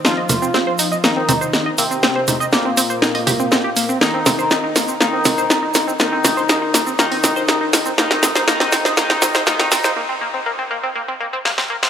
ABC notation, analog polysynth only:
X:1
M:4/4
L:1/8
Q:1/4=121
K:Cm
V:1 name="Analog polysynth" clef=bass
[F,F]4 [E,E]3 [C,C]- | [C,C]2 [B,,B,]6 | [E,E]4 [E,E]4 | [E,E]4 [E,E]4 |
[E,E]2 [E,E]2 [E,E]2 [E,E]2 | z8 |]